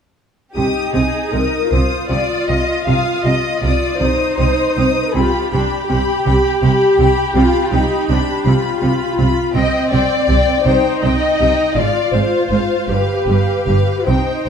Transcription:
0.55 0.64 C2 soft
0.55 0.64 C3 soft
0.55 1.68 D#4 soft
0.55 0.91 G4 soft
0.55 0.94 D#6 soft
0.94 1.03 C2 soft
0.94 1.02 C3 soft
0.94 1.33 G#4 soft
0.94 1.31 D#6 soft
1.32 1.41 C2 soft
1.32 1.41 C3 soft
1.32 1.72 A#4 soft
1.32 1.71 D#6 soft
1.71 1.80 C2 soft
1.71 1.80 C3 soft
1.71 4.00 F4 soft
1.71 2.10 C5 soft
1.71 2.10 D#6 soft
2.09 2.18 C2 soft
2.09 2.18 C3 soft
2.09 2.47 D5 soft
2.09 2.48 D#6 soft
2.48 2.57 C2 soft
2.48 2.56 C3 soft
2.48 2.87 D#5 soft
2.48 2.87 D#6 soft
2.86 2.94 C2 soft
2.86 2.94 C3 soft
2.86 3.24 F5 soft
2.86 3.25 D#6 soft
3.24 3.33 C2 soft
3.24 3.32 C3 soft
3.24 3.62 D#5 soft
3.24 3.62 D#6 soft
3.61 3.70 C2 soft
3.61 3.70 C3 soft
3.61 3.99 D5 soft
3.61 3.99 D#6 soft
3.99 4.09 C2 soft
3.99 4.08 C3 soft
3.99 5.15 D#4 soft
3.99 5.15 C5 medium
3.99 4.37 D#6 soft
4.38 4.47 C2 soft
4.38 4.46 C3 soft
4.38 4.75 D#6 soft
4.76 4.85 C2 soft
4.76 4.84 C3 soft
4.76 5.14 D#6 soft
5.14 5.24 C2 soft
5.14 5.22 C3 soft
5.14 5.52 F4 soft
5.14 9.19 G4 medium
5.14 5.51 B5 soft
5.53 5.61 C2 soft
5.53 5.61 C3 soft
5.53 5.89 D4 soft
5.53 5.87 B5 soft
5.89 5.98 C2 soft
5.89 5.97 C3 soft
5.89 7.33 G4 soft
5.89 6.25 B5 soft
6.26 6.34 C2 soft
6.26 6.34 C3 soft
6.26 6.61 B5 soft
6.63 6.71 C2 soft
6.63 6.71 C3 soft
6.63 6.99 B5 soft
6.99 7.07 C2 soft
6.99 7.07 C3 soft
6.99 7.35 B5 soft
7.35 7.43 C2 soft
7.35 7.43 C3 soft
7.35 7.72 F4 soft
7.35 7.72 B5 soft
7.72 7.80 C2 soft
7.72 7.80 C3 soft
7.72 8.09 D#4 soft
7.72 8.07 B5 soft
8.09 8.17 C2 soft
8.09 8.17 C3 soft
8.09 8.46 D4 soft
8.09 8.44 B5 soft
8.45 8.53 C2 soft
8.45 8.53 C3 soft
8.45 9.55 F4 soft
8.45 8.80 B5 soft
8.81 8.90 C2 soft
8.81 8.90 C3 soft
8.81 9.17 B5 soft
9.18 9.26 C2 soft
9.18 9.26 C3 soft
9.18 9.54 B5 soft
9.54 9.63 C2 soft
9.54 9.62 C3 soft
9.54 10.65 C4 soft
9.54 9.89 D#5 medium
9.54 9.89 G5 soft
9.91 10.00 C2 soft
9.91 9.99 C3 soft
9.91 10.66 D5 medium
9.91 10.26 G5 soft
10.27 10.36 C2 soft
10.27 10.36 C3 soft
10.27 10.64 G5 soft
10.65 10.73 C2 soft
10.65 10.74 C3 soft
10.65 11.74 D#4 soft
10.65 11.03 C5 soft
10.65 11.00 G5 soft
11.01 11.11 C2 soft
11.01 11.11 C3 soft
11.01 11.76 D#5 medium
11.01 11.37 G5 soft
11.39 11.48 C2 soft
11.39 11.48 C3 soft
11.39 11.75 G5 soft
11.75 11.83 G#1 soft
11.75 11.84 G#2 soft
11.75 12.89 F4 soft
11.75 12.13 D5 soft
11.75 12.12 F5 soft
12.13 12.21 G#1 soft
12.13 12.21 G#2 soft
12.13 12.89 C5 soft
12.13 12.50 F5 soft
12.50 12.58 G#1 soft
12.50 12.59 G#2 soft
12.50 12.88 F5 soft
12.88 12.96 G1 soft
12.88 12.97 G2 soft
12.88 14.07 G4 soft
12.88 13.65 B4 soft
12.88 13.27 F5 soft
13.27 13.35 G1 soft
13.27 13.36 G2 soft
13.27 13.66 F5 soft
13.66 13.74 G1 soft
13.66 13.76 G2 soft
13.66 14.06 B4 soft
13.66 14.06 F5 soft
14.06 14.15 C2 soft
14.06 14.16 C3 soft
14.06 14.49 D#4 soft
14.06 14.49 C5 soft
14.06 14.45 G5 soft

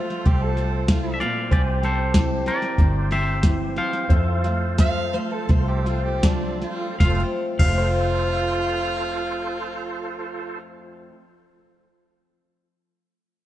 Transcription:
0.00 0.88 F2 medium
0.00 1.48 F3 medium
0.00 1.48 A3 medium
0.00 0.58 C4 medium
0.00 0.23 F4 medium
0.00 0.28 F4 medium
0.00 1.48 F4 medium
0.00 0.23 A4 medium
0.00 1.48 A4 medium
0.00 1.49 C5 medium
0.00 1.49 F5 medium
0.10 snare soft
0.25 1.21 C2 medium
0.25 1.20 C3 medium
0.25 0.43 G4 medium
0.25 kick loud
0.25 snare soft
0.42 0.88 A4 medium
0.57 1.83 C4 medium
0.57 snare soft
0.88 1.20 A2 medium
0.88 1.19 F4 medium
0.88 kick medium
0.88 snare loud
0.88 hi-hat pedal medium
1.14 1.21 E5 medium
1.20 1.52 A#2 medium
1.20 1.50 D5 medium
1.20 1.50 F5 medium
1.20 snare soft
1.51 2.48 C2 medium
1.51 2.15 C3 medium
1.51 4.06 C4 medium
1.51 1.61 G4 medium
1.51 4.07 G4 medium
1.51 4.07 C5 medium
1.51 1.61 D5 medium
1.51 1.72 G#5 medium
1.51 kick loud
1.51 snare soft
1.72 4.08 G5 medium
1.83 2.47 C4 medium
1.83 2.43 A4 medium
1.83 2.47 C5 medium
1.83 snare soft
2.14 3.43 E3 medium
2.14 3.11 G4 medium
2.14 kick medium
2.14 snare loud
2.14 hi-hat pedal medium
2.46 4.44 C4 medium
2.46 3.08 A#4 medium
2.46 3.12 D5 medium
2.46 snare soft
2.62 snare soft
2.78 3.78 G1 medium
2.78 4.06 G2 medium
2.78 kick loud
2.78 snare soft
3.11 4.07 G4 medium
3.11 3.73 C5 medium
3.11 3.77 E5 medium
3.11 snare soft
3.43 4.07 E3 medium
3.43 kick medium
3.43 snare loud
3.43 hi-hat pedal medium
3.76 6.20 C5 medium
3.76 6.20 F5 medium
3.76 snare soft
3.93 snare soft
4.09 5.16 F2 medium
4.09 6.99 F2 medium
4.09 6.96 F4 medium
4.09 6.96 A4 medium
4.09 6.96 C5 medium
4.09 6.97 C5 medium
4.09 4.34 E5 medium
4.09 kick loud
4.09 snare soft
4.34 6.97 F5 medium
4.44 5.14 A3 medium
4.44 snare soft
4.78 6.22 F3 medium
4.78 6.95 A4 medium
4.78 5.15 F5 loud
4.78 kick medium
4.78 snare loud
4.78 hi-hat pedal medium
5.13 6.96 A3 medium
5.13 5.33 C5 medium
5.13 snare soft
5.32 5.51 A4 medium
5.49 6.64 C2 medium
5.49 6.23 C3 medium
5.49 5.69 C5 medium
5.49 kick loud
5.49 snare soft
5.68 5.88 G4 medium
5.86 7.14 C4 medium
5.86 6.03 F4 medium
5.86 snare soft
6.05 6.26 G4 medium
6.23 6.95 F3 medium
6.23 6.60 D4 medium
6.23 kick medium
6.23 snare loud
6.23 hi-hat pedal medium
6.62 6.99 F4 medium
6.62 snare soft
7.00 7.22 F1 medium
7.00 7.59 F2 medium
7.00 7.22 F4 medium
7.00 7.23 F4 medium
7.00 7.23 A4 medium
7.00 7.22 C5 medium
7.00 7.22 F5 medium
7.00 kick medium
7.00 snare medium
7.05 7.64 F3 medium
7.10 7.69 A3 medium
7.15 7.74 C4 medium
7.20 7.79 A4 medium
7.59 10.58 F1 medium
7.59 11.10 F2 medium
7.59 10.59 F4 medium
7.59 10.59 F4 loud
7.59 10.59 A4 medium
7.59 10.58 C5 medium
7.59 10.58 F5 medium
7.59 kick loud
7.59 crash medium
7.64 11.14 F3 medium
7.69 11.19 A3 medium
7.74 11.24 C4 medium
7.74 10.78 C5 medium
7.79 11.29 A4 medium
7.79 10.79 F5 medium

